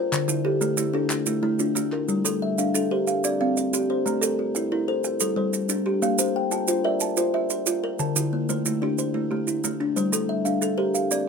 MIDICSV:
0, 0, Header, 1, 4, 480
1, 0, Start_track
1, 0, Tempo, 328228
1, 175, Time_signature, 12, 3, 24, 8
1, 16503, End_track
2, 0, Start_track
2, 0, Title_t, "Kalimba"
2, 0, Program_c, 0, 108
2, 0, Note_on_c, 0, 65, 78
2, 0, Note_on_c, 0, 74, 65
2, 0, Note_on_c, 0, 79, 73
2, 172, Note_off_c, 0, 65, 0
2, 179, Note_off_c, 0, 74, 0
2, 409, Note_on_c, 0, 50, 91
2, 651, Note_off_c, 0, 79, 0
2, 653, Note_on_c, 0, 69, 67
2, 875, Note_off_c, 0, 69, 0
2, 890, Note_off_c, 0, 50, 0
2, 892, Note_on_c, 0, 69, 61
2, 1130, Note_on_c, 0, 57, 93
2, 1365, Note_off_c, 0, 69, 0
2, 1382, Note_on_c, 0, 69, 74
2, 1609, Note_off_c, 0, 57, 0
2, 1616, Note_on_c, 0, 67, 75
2, 1856, Note_on_c, 0, 57, 84
2, 2087, Note_on_c, 0, 64, 64
2, 2095, Note_off_c, 0, 69, 0
2, 2325, Note_on_c, 0, 65, 58
2, 2331, Note_off_c, 0, 67, 0
2, 2332, Note_off_c, 0, 57, 0
2, 2563, Note_on_c, 0, 57, 83
2, 2807, Note_off_c, 0, 64, 0
2, 2815, Note_on_c, 0, 70, 74
2, 3045, Note_off_c, 0, 57, 0
2, 3046, Note_off_c, 0, 65, 0
2, 3285, Note_on_c, 0, 55, 85
2, 3530, Note_off_c, 0, 70, 0
2, 3766, Note_off_c, 0, 55, 0
2, 3776, Note_on_c, 0, 77, 53
2, 4013, Note_on_c, 0, 62, 84
2, 4263, Note_on_c, 0, 72, 64
2, 4477, Note_off_c, 0, 77, 0
2, 4489, Note_off_c, 0, 62, 0
2, 4495, Note_on_c, 0, 77, 64
2, 4738, Note_on_c, 0, 60, 78
2, 4970, Note_off_c, 0, 77, 0
2, 4974, Note_off_c, 0, 72, 0
2, 4986, Note_on_c, 0, 77, 59
2, 5212, Note_off_c, 0, 60, 0
2, 5221, Note_on_c, 0, 74, 59
2, 5462, Note_on_c, 0, 67, 84
2, 5696, Note_off_c, 0, 77, 0
2, 5705, Note_on_c, 0, 72, 62
2, 5932, Note_on_c, 0, 82, 59
2, 5934, Note_off_c, 0, 67, 0
2, 5934, Note_off_c, 0, 74, 0
2, 6164, Note_on_c, 0, 69, 94
2, 6409, Note_off_c, 0, 82, 0
2, 6416, Note_off_c, 0, 72, 0
2, 6645, Note_off_c, 0, 69, 0
2, 6650, Note_on_c, 0, 79, 58
2, 6904, Note_on_c, 0, 64, 82
2, 7359, Note_off_c, 0, 79, 0
2, 7375, Note_off_c, 0, 64, 0
2, 7377, Note_on_c, 0, 79, 67
2, 7614, Note_on_c, 0, 55, 76
2, 7852, Note_off_c, 0, 79, 0
2, 7857, Note_on_c, 0, 72, 62
2, 8091, Note_off_c, 0, 55, 0
2, 8092, Note_on_c, 0, 69, 60
2, 8330, Note_on_c, 0, 62, 80
2, 8572, Note_off_c, 0, 72, 0
2, 8572, Note_on_c, 0, 67, 74
2, 8809, Note_off_c, 0, 62, 0
2, 8810, Note_off_c, 0, 69, 0
2, 8810, Note_on_c, 0, 77, 65
2, 9047, Note_on_c, 0, 58, 85
2, 9289, Note_off_c, 0, 77, 0
2, 9290, Note_off_c, 0, 67, 0
2, 9528, Note_off_c, 0, 58, 0
2, 9529, Note_on_c, 0, 81, 57
2, 9772, Note_on_c, 0, 65, 89
2, 10014, Note_on_c, 0, 76, 67
2, 10237, Note_off_c, 0, 81, 0
2, 10250, Note_off_c, 0, 65, 0
2, 10255, Note_on_c, 0, 81, 64
2, 10485, Note_on_c, 0, 65, 81
2, 10719, Note_off_c, 0, 76, 0
2, 10737, Note_on_c, 0, 76, 60
2, 10967, Note_off_c, 0, 65, 0
2, 10970, Note_on_c, 0, 72, 65
2, 10972, Note_off_c, 0, 81, 0
2, 11217, Note_on_c, 0, 65, 84
2, 11453, Note_off_c, 0, 76, 0
2, 11460, Note_on_c, 0, 70, 62
2, 11690, Note_off_c, 0, 72, 0
2, 11691, Note_on_c, 0, 81, 62
2, 11693, Note_off_c, 0, 65, 0
2, 11933, Note_on_c, 0, 50, 93
2, 12171, Note_off_c, 0, 81, 0
2, 12175, Note_off_c, 0, 70, 0
2, 12412, Note_off_c, 0, 50, 0
2, 12421, Note_on_c, 0, 72, 57
2, 12660, Note_on_c, 0, 57, 80
2, 12912, Note_on_c, 0, 67, 69
2, 13122, Note_off_c, 0, 72, 0
2, 13135, Note_off_c, 0, 57, 0
2, 13139, Note_on_c, 0, 72, 66
2, 13370, Note_on_c, 0, 57, 76
2, 13593, Note_off_c, 0, 67, 0
2, 13610, Note_on_c, 0, 67, 68
2, 13851, Note_off_c, 0, 57, 0
2, 13852, Note_on_c, 0, 64, 60
2, 13856, Note_off_c, 0, 72, 0
2, 14100, Note_on_c, 0, 57, 70
2, 14332, Note_off_c, 0, 67, 0
2, 14336, Note_on_c, 0, 62, 68
2, 14569, Note_on_c, 0, 72, 68
2, 14573, Note_off_c, 0, 64, 0
2, 14577, Note_off_c, 0, 57, 0
2, 14806, Note_on_c, 0, 55, 85
2, 15052, Note_off_c, 0, 72, 0
2, 15055, Note_off_c, 0, 62, 0
2, 15282, Note_on_c, 0, 77, 59
2, 15290, Note_off_c, 0, 55, 0
2, 15526, Note_on_c, 0, 62, 87
2, 15766, Note_on_c, 0, 72, 61
2, 15988, Note_off_c, 0, 77, 0
2, 16005, Note_on_c, 0, 77, 62
2, 16011, Note_off_c, 0, 62, 0
2, 16248, Note_on_c, 0, 60, 78
2, 16470, Note_off_c, 0, 77, 0
2, 16491, Note_off_c, 0, 72, 0
2, 16503, Note_off_c, 0, 60, 0
2, 16503, End_track
3, 0, Start_track
3, 0, Title_t, "Kalimba"
3, 0, Program_c, 1, 108
3, 0, Note_on_c, 1, 65, 81
3, 0, Note_on_c, 1, 70, 79
3, 0, Note_on_c, 1, 72, 65
3, 178, Note_off_c, 1, 65, 0
3, 178, Note_off_c, 1, 70, 0
3, 178, Note_on_c, 1, 50, 93
3, 409, Note_on_c, 1, 64, 70
3, 411, Note_off_c, 1, 72, 0
3, 653, Note_on_c, 1, 67, 75
3, 655, Note_off_c, 1, 50, 0
3, 892, Note_on_c, 1, 57, 83
3, 1116, Note_off_c, 1, 64, 0
3, 1133, Note_on_c, 1, 64, 67
3, 1367, Note_on_c, 1, 62, 72
3, 1367, Note_on_c, 1, 65, 61
3, 1371, Note_off_c, 1, 57, 0
3, 1371, Note_off_c, 1, 67, 0
3, 1830, Note_off_c, 1, 64, 0
3, 1848, Note_off_c, 1, 62, 0
3, 1848, Note_on_c, 1, 64, 72
3, 2087, Note_off_c, 1, 65, 0
3, 2088, Note_on_c, 1, 57, 82
3, 2331, Note_on_c, 1, 62, 76
3, 2548, Note_off_c, 1, 57, 0
3, 2566, Note_on_c, 1, 57, 75
3, 2568, Note_off_c, 1, 64, 0
3, 3046, Note_off_c, 1, 57, 0
3, 3049, Note_off_c, 1, 62, 0
3, 3049, Note_on_c, 1, 55, 80
3, 3288, Note_on_c, 1, 69, 59
3, 3528, Note_off_c, 1, 55, 0
3, 3543, Note_on_c, 1, 76, 69
3, 3782, Note_on_c, 1, 62, 69
3, 4003, Note_off_c, 1, 69, 0
3, 4021, Note_on_c, 1, 69, 67
3, 4254, Note_off_c, 1, 62, 0
3, 4254, Note_off_c, 1, 76, 0
3, 4260, Note_on_c, 1, 67, 70
3, 4261, Note_on_c, 1, 70, 58
3, 4493, Note_off_c, 1, 67, 0
3, 4733, Note_off_c, 1, 69, 0
3, 4733, Note_off_c, 1, 70, 0
3, 4746, Note_on_c, 1, 74, 67
3, 4982, Note_on_c, 1, 60, 77
3, 5454, Note_off_c, 1, 60, 0
3, 5456, Note_off_c, 1, 74, 0
3, 5459, Note_on_c, 1, 67, 77
3, 5701, Note_on_c, 1, 72, 62
3, 5933, Note_off_c, 1, 67, 0
3, 5933, Note_on_c, 1, 57, 83
3, 6173, Note_off_c, 1, 72, 0
3, 6183, Note_on_c, 1, 70, 66
3, 6410, Note_off_c, 1, 57, 0
3, 6419, Note_on_c, 1, 65, 60
3, 6666, Note_on_c, 1, 64, 79
3, 6882, Note_off_c, 1, 70, 0
3, 6899, Note_on_c, 1, 70, 59
3, 7133, Note_off_c, 1, 65, 0
3, 7136, Note_off_c, 1, 64, 0
3, 7138, Note_on_c, 1, 69, 65
3, 7140, Note_on_c, 1, 72, 62
3, 7372, Note_off_c, 1, 69, 0
3, 7611, Note_on_c, 1, 69, 66
3, 7613, Note_off_c, 1, 70, 0
3, 7613, Note_off_c, 1, 72, 0
3, 7843, Note_on_c, 1, 55, 79
3, 8322, Note_on_c, 1, 62, 70
3, 8325, Note_off_c, 1, 55, 0
3, 8329, Note_off_c, 1, 69, 0
3, 8566, Note_on_c, 1, 67, 65
3, 8805, Note_off_c, 1, 62, 0
3, 8805, Note_on_c, 1, 58, 86
3, 9047, Note_off_c, 1, 67, 0
3, 9050, Note_on_c, 1, 72, 68
3, 9286, Note_off_c, 1, 58, 0
3, 9300, Note_on_c, 1, 79, 62
3, 9524, Note_on_c, 1, 65, 79
3, 9749, Note_off_c, 1, 72, 0
3, 9767, Note_on_c, 1, 72, 66
3, 10006, Note_off_c, 1, 65, 0
3, 10010, Note_on_c, 1, 70, 78
3, 10013, Note_on_c, 1, 74, 55
3, 10014, Note_off_c, 1, 79, 0
3, 10475, Note_off_c, 1, 72, 0
3, 10489, Note_off_c, 1, 70, 0
3, 10493, Note_on_c, 1, 72, 72
3, 10731, Note_off_c, 1, 74, 0
3, 10734, Note_on_c, 1, 65, 77
3, 11187, Note_off_c, 1, 65, 0
3, 11204, Note_on_c, 1, 65, 77
3, 11211, Note_off_c, 1, 72, 0
3, 11459, Note_on_c, 1, 70, 68
3, 11687, Note_off_c, 1, 65, 0
3, 11690, Note_on_c, 1, 50, 88
3, 11932, Note_on_c, 1, 64, 71
3, 11935, Note_off_c, 1, 70, 0
3, 12170, Note_off_c, 1, 50, 0
3, 12179, Note_on_c, 1, 58, 63
3, 12419, Note_on_c, 1, 57, 75
3, 12641, Note_off_c, 1, 64, 0
3, 12659, Note_on_c, 1, 64, 63
3, 12893, Note_on_c, 1, 65, 55
3, 12895, Note_off_c, 1, 57, 0
3, 12895, Note_off_c, 1, 58, 0
3, 12899, Note_on_c, 1, 62, 74
3, 13352, Note_off_c, 1, 64, 0
3, 13369, Note_on_c, 1, 64, 67
3, 13375, Note_off_c, 1, 62, 0
3, 13613, Note_off_c, 1, 65, 0
3, 13622, Note_on_c, 1, 57, 72
3, 14079, Note_off_c, 1, 57, 0
3, 14091, Note_off_c, 1, 64, 0
3, 14097, Note_on_c, 1, 57, 81
3, 14342, Note_on_c, 1, 62, 63
3, 14575, Note_off_c, 1, 57, 0
3, 14578, Note_on_c, 1, 55, 86
3, 14813, Note_on_c, 1, 69, 60
3, 14818, Note_off_c, 1, 62, 0
3, 15050, Note_on_c, 1, 76, 64
3, 15056, Note_off_c, 1, 55, 0
3, 15285, Note_on_c, 1, 62, 68
3, 15514, Note_off_c, 1, 69, 0
3, 15531, Note_on_c, 1, 69, 65
3, 15758, Note_on_c, 1, 70, 63
3, 15761, Note_on_c, 1, 67, 69
3, 15770, Note_off_c, 1, 62, 0
3, 15773, Note_off_c, 1, 76, 0
3, 16008, Note_off_c, 1, 67, 0
3, 16247, Note_off_c, 1, 70, 0
3, 16252, Note_on_c, 1, 74, 64
3, 16254, Note_off_c, 1, 69, 0
3, 16503, Note_off_c, 1, 74, 0
3, 16503, End_track
4, 0, Start_track
4, 0, Title_t, "Drums"
4, 188, Note_on_c, 9, 70, 57
4, 189, Note_on_c, 9, 39, 65
4, 334, Note_off_c, 9, 70, 0
4, 335, Note_off_c, 9, 39, 0
4, 421, Note_on_c, 9, 70, 82
4, 567, Note_off_c, 9, 70, 0
4, 897, Note_on_c, 9, 70, 63
4, 1043, Note_off_c, 9, 70, 0
4, 1131, Note_on_c, 9, 70, 83
4, 1277, Note_off_c, 9, 70, 0
4, 1607, Note_on_c, 9, 39, 66
4, 1615, Note_on_c, 9, 70, 62
4, 1753, Note_off_c, 9, 39, 0
4, 1761, Note_off_c, 9, 70, 0
4, 1846, Note_on_c, 9, 70, 79
4, 1992, Note_off_c, 9, 70, 0
4, 2330, Note_on_c, 9, 70, 60
4, 2476, Note_off_c, 9, 70, 0
4, 2576, Note_on_c, 9, 70, 76
4, 2722, Note_off_c, 9, 70, 0
4, 2811, Note_on_c, 9, 39, 19
4, 2957, Note_off_c, 9, 39, 0
4, 3050, Note_on_c, 9, 70, 52
4, 3196, Note_off_c, 9, 70, 0
4, 3295, Note_on_c, 9, 70, 77
4, 3441, Note_off_c, 9, 70, 0
4, 3779, Note_on_c, 9, 70, 57
4, 3925, Note_off_c, 9, 70, 0
4, 4020, Note_on_c, 9, 70, 81
4, 4167, Note_off_c, 9, 70, 0
4, 4494, Note_on_c, 9, 70, 60
4, 4641, Note_off_c, 9, 70, 0
4, 4739, Note_on_c, 9, 70, 77
4, 4885, Note_off_c, 9, 70, 0
4, 5222, Note_on_c, 9, 70, 55
4, 5368, Note_off_c, 9, 70, 0
4, 5464, Note_on_c, 9, 70, 73
4, 5610, Note_off_c, 9, 70, 0
4, 5947, Note_on_c, 9, 70, 59
4, 6093, Note_off_c, 9, 70, 0
4, 6178, Note_on_c, 9, 70, 84
4, 6324, Note_off_c, 9, 70, 0
4, 6660, Note_on_c, 9, 70, 61
4, 6806, Note_off_c, 9, 70, 0
4, 7369, Note_on_c, 9, 70, 59
4, 7516, Note_off_c, 9, 70, 0
4, 7606, Note_on_c, 9, 70, 82
4, 7752, Note_off_c, 9, 70, 0
4, 8091, Note_on_c, 9, 70, 63
4, 8238, Note_off_c, 9, 70, 0
4, 8322, Note_on_c, 9, 70, 78
4, 8469, Note_off_c, 9, 70, 0
4, 8810, Note_on_c, 9, 70, 62
4, 8956, Note_off_c, 9, 70, 0
4, 9045, Note_on_c, 9, 70, 84
4, 9191, Note_off_c, 9, 70, 0
4, 9527, Note_on_c, 9, 70, 62
4, 9673, Note_off_c, 9, 70, 0
4, 9763, Note_on_c, 9, 70, 87
4, 9910, Note_off_c, 9, 70, 0
4, 10242, Note_on_c, 9, 70, 63
4, 10388, Note_off_c, 9, 70, 0
4, 10484, Note_on_c, 9, 70, 80
4, 10630, Note_off_c, 9, 70, 0
4, 10968, Note_on_c, 9, 70, 66
4, 11114, Note_off_c, 9, 70, 0
4, 11208, Note_on_c, 9, 70, 90
4, 11354, Note_off_c, 9, 70, 0
4, 11687, Note_on_c, 9, 70, 59
4, 11833, Note_off_c, 9, 70, 0
4, 11936, Note_on_c, 9, 70, 88
4, 12082, Note_off_c, 9, 70, 0
4, 12420, Note_on_c, 9, 70, 61
4, 12567, Note_off_c, 9, 70, 0
4, 12660, Note_on_c, 9, 70, 80
4, 12807, Note_off_c, 9, 70, 0
4, 13138, Note_on_c, 9, 70, 55
4, 13284, Note_off_c, 9, 70, 0
4, 13856, Note_on_c, 9, 70, 59
4, 14002, Note_off_c, 9, 70, 0
4, 14099, Note_on_c, 9, 70, 71
4, 14246, Note_off_c, 9, 70, 0
4, 14578, Note_on_c, 9, 70, 57
4, 14724, Note_off_c, 9, 70, 0
4, 14815, Note_on_c, 9, 70, 79
4, 14961, Note_off_c, 9, 70, 0
4, 15290, Note_on_c, 9, 70, 52
4, 15437, Note_off_c, 9, 70, 0
4, 15530, Note_on_c, 9, 70, 69
4, 15677, Note_off_c, 9, 70, 0
4, 16011, Note_on_c, 9, 70, 61
4, 16157, Note_off_c, 9, 70, 0
4, 16249, Note_on_c, 9, 70, 78
4, 16395, Note_off_c, 9, 70, 0
4, 16503, End_track
0, 0, End_of_file